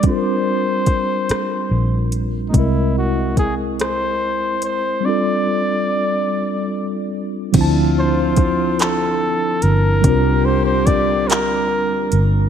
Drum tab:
CC |------|------|------|x-----|
HH |x-xx-x|x-xx-x|------|x-xx-x|
CP |------|------|------|---x--|
SD |---r--|---r--|------|------|
BD |o-o---|o-o---|------|o-o---|

CC |------|
HH |x-xx-x|
CP |---x--|
SD |------|
BD |o-o---|